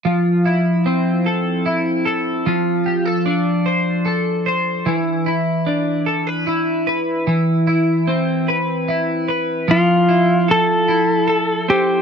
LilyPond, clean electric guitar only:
\new Staff \with { instrumentName = "Clean electric guitar" } { \time 6/8 \key f \lydian \tempo 4. = 50 f8 e'8 c'8 a'8 e'8 a'8 | f8 g'16 a'16 d'8 c''8 a'8 c''8 | e8 e'8 d'8 a'16 b'16 e'8 b'8 | e8 e'8 c'8 b'8 e'8 b'8 |
f8 e'8 a'8 e'8 a'8 c'8 | }